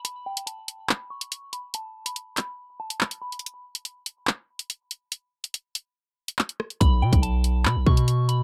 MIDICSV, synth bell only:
0, 0, Header, 1, 2, 480
1, 0, Start_track
1, 0, Tempo, 422535
1, 56, Time_signature, 4, 2, 24, 8
1, 9580, End_track
2, 0, Start_track
2, 0, Title_t, "Synth bell"
2, 0, Program_c, 0, 98
2, 53, Note_on_c, 0, 83, 120
2, 241, Note_off_c, 0, 83, 0
2, 298, Note_on_c, 0, 79, 81
2, 485, Note_off_c, 0, 79, 0
2, 528, Note_on_c, 0, 81, 79
2, 983, Note_off_c, 0, 81, 0
2, 1013, Note_on_c, 0, 83, 76
2, 1201, Note_off_c, 0, 83, 0
2, 1253, Note_on_c, 0, 85, 90
2, 1705, Note_off_c, 0, 85, 0
2, 1736, Note_on_c, 0, 83, 80
2, 1923, Note_off_c, 0, 83, 0
2, 1982, Note_on_c, 0, 81, 92
2, 2317, Note_off_c, 0, 81, 0
2, 2337, Note_on_c, 0, 83, 72
2, 2675, Note_off_c, 0, 83, 0
2, 2701, Note_on_c, 0, 83, 81
2, 2886, Note_off_c, 0, 83, 0
2, 3177, Note_on_c, 0, 81, 86
2, 3364, Note_off_c, 0, 81, 0
2, 3419, Note_on_c, 0, 83, 78
2, 3605, Note_off_c, 0, 83, 0
2, 3652, Note_on_c, 0, 83, 80
2, 3841, Note_off_c, 0, 83, 0
2, 7731, Note_on_c, 0, 83, 114
2, 7920, Note_off_c, 0, 83, 0
2, 7978, Note_on_c, 0, 79, 83
2, 8164, Note_off_c, 0, 79, 0
2, 8208, Note_on_c, 0, 81, 82
2, 8663, Note_off_c, 0, 81, 0
2, 8694, Note_on_c, 0, 83, 79
2, 8882, Note_off_c, 0, 83, 0
2, 8933, Note_on_c, 0, 85, 93
2, 9386, Note_off_c, 0, 85, 0
2, 9413, Note_on_c, 0, 83, 76
2, 9580, Note_off_c, 0, 83, 0
2, 9580, End_track
0, 0, End_of_file